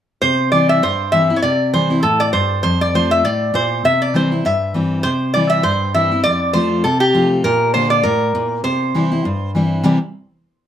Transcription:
0.22 steel-string acoustic guitar C3, resonator guitar played with a steel bar C5
0.52 steel-string acoustic guitar E3 G3 C4 E4, resonator guitar played with a steel bar D5
0.69 resonator guitar played with a steel bar E5
0.83 steel-string acoustic guitar G2, resonator guitar played with a steel bar C5
1.12 steel-string acoustic guitar E3 G3 C4 E4, resonator guitar played with a steel bar E5
1.30 steel-string acoustic guitar C4 E4
1.36 resonator guitar played with a steel bar C#5
1.42 steel-string acoustic guitar C3, resonator guitar played with a steel bar D5
1.73 steel-string acoustic guitar E3 G3 C4 E4, resonator guitar played with a steel bar C5
1.90 steel-string acoustic guitar C4 E4
2.03 steel-string acoustic guitar A2, resonator guitar played with a steel bar A4
2.20 resonator guitar played with a steel bar D5
2.33 steel-string acoustic guitar G2, resonator guitar played with a steel bar C5
2.63 steel-string acoustic guitar F2, resonator guitar played with a steel bar C5
2.81 resonator guitar played with a steel bar D5
2.94 steel-string acoustic guitar F3 A3 C4 F4, resonator guitar played with a steel bar C5
3.11 resonator guitar played with a steel bar E5
3.24 steel-string acoustic guitar A2, resonator guitar played with a steel bar D5
3.54 steel-string acoustic guitar A#2, resonator guitar played with a steel bar C5
3.85 steel-string acoustic guitar C3, resonator guitar played with a steel bar E5
4.02 resonator guitar played with a steel bar D5
4.14 steel-string acoustic guitar E3 G3 C4 E4, resonator guitar played with a steel bar C5
4.31 steel-string acoustic guitar C4 E4
4.45 steel-string acoustic guitar G2, resonator guitar played with a steel bar E5
4.74 steel-string acoustic guitar E3 G3 C4 E4
5.03 steel-string acoustic guitar C3, resonator guitar played with a steel bar C5
5.34 steel-string acoustic guitar E3 G3 C4 E4, resonator guitar played with a steel bar D5
5.50 resonator guitar played with a steel bar E5
5.63 steel-string acoustic guitar G2, resonator guitar played with a steel bar C5
5.94 steel-string acoustic guitar E3 G3 C4 E4, resonator guitar played with a steel bar E5
6.12 steel-string acoustic guitar C4 E4
6.24 steel-string acoustic guitar F2, resonator guitar played with a steel bar D5
6.53 steel-string acoustic guitar F3 A3 C4 F4, resonator guitar played with a steel bar C5
6.84 steel-string acoustic guitar C3, resonator guitar played with a steel bar A4
7.00 resonator guitar played with a steel bar G4
7.14 steel-string acoustic guitar F3 A3 C4 F4
7.44 steel-string acoustic guitar A#2, resonator guitar played with a steel bar A#4
7.74 steel-string acoustic guitar D3 A#3 D4 F4, resonator guitar played with a steel bar C5
7.90 resonator guitar played with a steel bar D5
8.03 steel-string acoustic guitar A2, resonator guitar played with a steel bar A#4
8.35 steel-string acoustic guitar A#2
8.64 steel-string acoustic guitar C3, resonator guitar played with a steel bar C5
8.94 steel-string acoustic guitar E3 G3 C4 E4
9.11 steel-string acoustic guitar C4 E4
9.25 steel-string acoustic guitar G2
9.55 steel-string acoustic guitar E3 G3 C4 E4
9.84 steel-string acoustic guitar C3 E3 G3 C4 E4

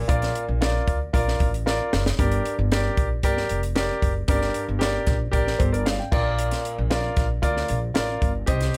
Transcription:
Already playing: grand piano A#2
0.08 upright bass A#1, grand piano F4 A#4 D5, kick, closed hi-hat
0.22 snare, closed hi-hat
0.35 closed hi-hat
0.48 upright bass A#1
0.61 grand piano F4 A#4 D5, snare, closed hi-hat
0.87 upright bass D2, kick, closed hi-hat
1.13 upright bass A#1, grand piano F4 A#4 D5, kick, closed hi-hat
1.28 snare
1.40 upright bass A1, kick, closed hi-hat
1.54 closed hi-hat
1.66 grand piano F4 A#4 D5, snare
1.93 upright bass F#1, snare
2.06 snare
2.19 upright bass G1, grand piano G2 G4 A#4 D5, kick, closed hi-hat
2.31 closed hi-hat
2.45 closed hi-hat
2.59 upright bass G1
2.72 grand piano G4 A#4 D5, snare, closed hi-hat
2.97 upright bass A#1, kick, closed hi-hat
3.23 upright bass G1, grand piano G4 A#4 D5, kick, closed hi-hat
3.37 snare
3.49 upright bass F1, closed hi-hat
3.63 closed hi-hat
3.75 grand piano G4 A#4 D5, snare, closed hi-hat
4.02 upright bass F#1, kick, closed hi-hat
4.28 upright bass G1, grand piano G2 G4 A#4 D5, kick, closed hi-hat
4.42 snare
4.54 closed hi-hat
4.69 upright bass G1
4.79 grand piano G4 A#4 D5, snare, closed hi-hat
5.07 upright bass A#1, kick, snare, closed hi-hat
5.32 upright bass A1, grand piano G4 A#4 D5, kick, closed hi-hat
5.47 snare
5.58 upright bass G1, grand piano A4 C5, kick, closed hi-hat
5.72 grand piano A#4 D5, closed hi-hat
5.86 grand piano D5 F5, snare, closed hi-hat
5.99 grand piano G5
6.12 upright bass A#1, grand piano A#2 F4 A#4 D5, kick, crash
6.39 closed hi-hat
6.51 snare, closed hi-hat
6.65 closed hi-hat
6.78 upright bass A#1
6.90 grand piano F4 A#4 D5, snare, closed hi-hat
7.17 upright bass A#1, kick, snare, closed hi-hat
7.42 upright bass D2, grand piano F4 A#4 D5, kick, closed hi-hat
7.57 snare
7.68 upright bass A#1, closed hi-hat
7.94 upright bass A1, grand piano F4 A#4 D5, snare, closed hi-hat
8.22 upright bass G1, kick, closed hi-hat
8.46 upright bass C2, grand piano C3 G4 C5 D#5, kick, closed hi-hat
8.61 snare, closed hi-hat

